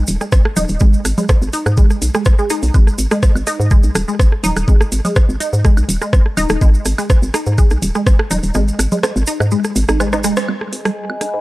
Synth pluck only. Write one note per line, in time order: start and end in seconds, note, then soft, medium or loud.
0.21 0.24 G#3 medium
0.56 0.63 D#4 loud
0.81 0.87 G#3 medium
1.18 1.21 G#3 medium
1.53 1.60 D#4 loud
1.78 1.84 G#3 medium
2.15 2.23 G#3 medium
2.39 2.47 G#3 loud
2.50 2.54 D#4 loud
2.74 2.81 G#3 medium
3.11 3.15 G#3 medium
3.47 3.53 D#4 medium
3.71 3.77 G#3 medium
4.08 4.11 G#3 medium
4.44 4.50 D#4 loud
4.68 4.74 G#3 medium
5.05 5.08 G#3 medium
5.40 5.47 D#4 loud
5.65 5.71 G#3 medium
6.02 6.05 G#3 medium
6.37 6.44 D#4 loud
6.62 6.68 G#3 medium
6.98 7.02 G#3 medium
7.34 7.40 D#4 loud
7.58 7.64 G#3 medium
7.95 7.99 G#3 medium
8.31 8.37 D#4 loud
8.55 8.61 G#3 medium
8.92 8.95 G#3 medium
9.27 9.34 D#4 loud
9.52 9.58 G#3 medium
9.89 9.97 D#4 medium
10.00 10.04 G#3 medium
10.13 10.16 D#4 loud
10.24 10.34 G#3 loud
10.49 10.55 G#3 medium
10.85 10.89 G#3 medium
11.21 11.27 D#4 medium